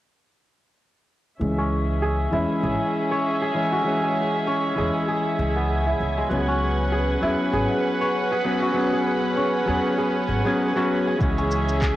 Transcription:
1.40 C#2 E3 G#3 C#4 G#4 E5 G#5
1.58 C#4
2.02 G#4
2.31 E2 E3 G#3 E4
2.35 C#4
2.63 G#1 G#4
3.11 C#5
3.42 G#4
3.54 E3 G#3 C#4
3.72 F#4
3.84 E3 G#3 C#4
4.03 G#4
4.47 C#4
4.75 E2 E3 G#3 G#4
4.79 C#4
5.08 G#4
5.39 C#2
5.56 B3
5.87 E4
6.00 C#2
6.17 G#3
6.29 C#2 F#3 B3 C#4 B4 F#5
6.33 C#4
6.48 C#4
6.92 G#4
7.21 E2 F#3 B3 E4
7.25 C#4
7.53 G#1 G#4
8.01 C#5
8.32 G#4
8.44 F#3 B3 C#4
8.62 F#4
8.74 F#3 B3
8.78 C#4
8.93 G#4
9.37 C#4
9.66 E2 F#3 B3 G#4
9.70 C#4
9.98 G#4
10.29 G#1
10.45 F#3 B3 C#4 G#4
10.76 F#3 B3 C#4 F#4
11.07 G#4
11.19 C#2 E3 G#3 G#4 E5, kick, shaker
11.23 C#4
11.38 C#4, shaker
11.51 shaker
11.69 shaker
11.82 G#4, kick, clap, shaker

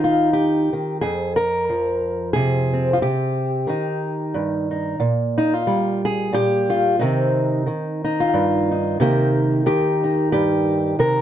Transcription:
Already playing: D#3 C4 D#4
0.04 F4
0.33 G4
0.73 D#3
1.01 F2 G#4
1.36 A#4
1.70 F3
2.33 C3 G#4
2.73 C4
2.93 F4
3.02 C3 G4
3.67 D#3 D#4
4.34 G2
4.71 D#4
5.00 A#2
5.38 D#4
5.54 F4
5.67 G3
6.05 G#4
6.33 A#2 G4
6.70 F4
6.99 C3 D#3 C4 D#4
7.66 D#3
8.04 D#4
8.20 F4
8.34 G2
8.71 D#4
9.00 C3 D#3 A#3 D#4 G4
9.66 D#3 G4
10.04 D#4
10.32 G2 G4
10.99 C3 A#4

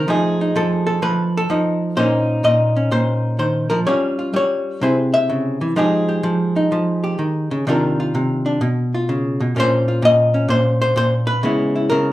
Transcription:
0.08 F3 A3 D#4 G#4
0.41 D#4
0.56 F3 A4
0.87 A4
1.02 F3 B4
1.37 A4
1.50 F3 D#4
1.97 A#2 A#3 C#4 D#4 C5
2.44 A#2 D#5
2.76 C#4
2.91 A#2 C5
3.39 D#3 C5
3.70 F3 A#4
3.87 G3 C#4 F4 C#5
4.19 F4
4.33 G3 C#5
4.81 C3 C4 E4 G#4 C5
5.14 E5
5.30 C#3
5.61 E3
5.76 F3 G#3 D#4 G4 G#4
6.09 G4
6.23 F3
6.56 D#4
6.72 F3
7.04 G4
7.19 D#3
7.51 C#3
7.67 C3 D#3 D4 F4 A#4
8.00 F4
8.15 C3
8.46 D4
8.61 B2
8.95 F4
9.09 C#3
9.40 B2
9.56 A#2 A#3 C#4 F4 C5
9.88 F4
10.02 A#2 D#5
10.34 C#4
10.48 A#2 C5
10.82 C5
10.96 A#2 C5
11.27 B4
11.43 C#3 G#3 B3 E4
11.76 E4
11.90 C#3 A#4

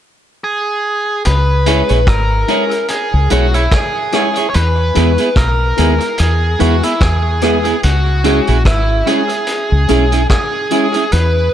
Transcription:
0.44 G#4
1.25 C#2 B4, closed hi-hat
1.66 G#3 C#4 E4 G#4 C#5, closed hi-hat
1.89 A#1 E4 G#4 C#5, closed hi-hat
2.07 G#1 A#4, kick, cross-stick, closed hi-hat
2.48 G#3 C#4 E4 G#4 C#5, closed hi-hat
2.71 closed hi-hat
2.88 G#4, closed hi-hat
3.14 C#2
3.30 B1 G#3 C#4 E4 F#4 G#4 C#5, closed hi-hat
3.53 E4 G#4 C#5, closed hi-hat
3.72 G#4, kick, cross-stick, closed hi-hat
4.12 G#3 C#4 E4 G#4 C#5, cross-stick, closed hi-hat
4.36 E4 G#4 C#5, closed hi-hat
4.50 C#5
4.54 E2 B4, closed hi-hat
4.94 E2 G#3 B3 E4 G#4, closed hi-hat
5.18 B3 E4 G#4, closed hi-hat
5.36 B1 A#4, kick, cross-stick, closed hi-hat
5.77 D#2 G#3 B3 E4 G#4, closed hi-hat
6.00 closed hi-hat
6.18 E2 G#4, closed hi-hat
6.59 E2 G#3 B3 E4 F#4 G#4, closed hi-hat
6.83 B3 E4 G#4, closed hi-hat
7.01 E2 G#4, kick, cross-stick, closed hi-hat
7.41 G#3 B3 E4 G#4, cross-stick, closed hi-hat
7.65 B3 E4 G#4, closed hi-hat
7.83 C#2 F#4, closed hi-hat
8.23 G#3 C#4 E4 G#4, closed hi-hat
8.47 A#1 C#4 E4 G#4, closed hi-hat
8.65 G#1 E4, kick, cross-stick, closed hi-hat
9.06 G#3 C#4 E4 G#4, closed hi-hat
9.29 closed hi-hat
9.47 closed hi-hat
9.72 C#2
9.88 B1 G#3 C#4 E4 G#4, closed hi-hat
10.12 C#4 E4 G#4, closed hi-hat
10.30 G#4, kick, cross-stick, closed hi-hat
10.71 G#3 C#4 E4 G#4, closed hi-hat
10.94 C#4 E4 G#4, closed hi-hat
11.12 E2 B4, closed hi-hat

